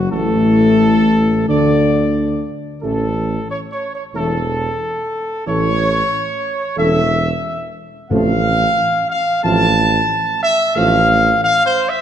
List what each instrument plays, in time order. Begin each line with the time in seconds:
0.10 tuba A1, trombone section A2, french horn section A3, trumpet section A4
1.48 tuba D2, trombone section D3, french horn section D4, trumpet section D5
2.82 tuba A1, trombone section E3 A3, french horn section C#4 A4, trumpet section A4
3.49 trumpet section C#5
3.72 trumpet section C#5
3.94 trumpet section C#5
4.14 tuba E1, trombone section E3 A3, french horn section C#4 A4, trumpet section A4
5.46 tuba A1, trombone section E3 A3, french horn section C#4 A4, trumpet section C#5
6.77 tuba E1, trombone section E3 A3, french horn section C#4 A4, trumpet section E5
8.10 tuba A1, timpani A2, trombone section F3 A3, french horn section C4 A4, trumpet section F5
9.10 trumpet section F5
9.43 tuba A1, trombone section F3 A3, french horn section C4 A4, trumpet section A5
10.42 trumpet section E5
10.76 tuba A1, trombone section F3 A3, french horn section C4 A4, trumpet section F5
11.42 trumpet section F5
11.66 trumpet section C5
11.88 trumpet section E5